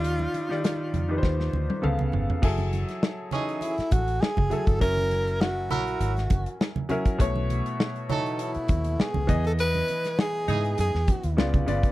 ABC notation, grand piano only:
X:1
M:4/4
L:1/16
Q:"Swing 16ths" 1/4=100
K:Eb
V:1 name="Grand piano"
[E,EGd]2 z [E,EGd]3 z [E,EG=Bc]4- [E,EGBc] [_D,_C=Af]3 z | [K:F#dor] [F,EGA]6 z8 [F,EGA] z | [F,CE^A]6 z8 [F,CEA] z | [B,,A,Ec]6 z8 [E,B,Gd]2- |
[E,B,Gd]4 z8 [C,B,^E=d]2 [C,B,Ed] z |]